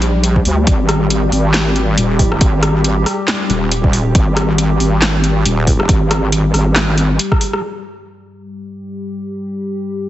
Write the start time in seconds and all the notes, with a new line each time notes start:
Already playing: A#1 G3 G4
0.02 closed hi-hat
0.24 closed hi-hat
0.36 kick
0.45 D2, open hi-hat
0.67 G#1, kick, closed hi-hat
0.89 cross-stick, closed hi-hat
1.10 closed hi-hat
1.32 G#1, open hi-hat
1.54 snare, clap, closed hi-hat
1.76 closed hi-hat
1.97 D#1, closed hi-hat
2.19 kick, open hi-hat
2.32 cross-stick
2.41 G#1, kick, closed hi-hat
2.63 cross-stick, closed hi-hat
2.84 closed hi-hat
3.06 cross-stick, open hi-hat
3.28 snare, clap, closed hi-hat
3.50 D#1, closed hi-hat
3.72 closed hi-hat
3.84 kick
3.93 open hi-hat
4.15 G#1, kick, closed hi-hat
4.37 cross-stick, closed hi-hat
4.58 closed hi-hat
4.80 G#1, open hi-hat
5.02 snare, clap, closed hi-hat
5.24 closed hi-hat
5.45 D#1, closed hi-hat
5.67 kick, open hi-hat
5.80 cross-stick
5.89 G#1, kick, closed hi-hat
6.11 cross-stick, closed hi-hat
6.32 closed hi-hat
6.54 G#1, cross-stick, open hi-hat
6.76 snare, clap, closed hi-hat
6.98 closed hi-hat
7.19 closed hi-hat
7.32 kick, cross-stick
7.41 open hi-hat
7.53 cross-stick
7.63 G3 G4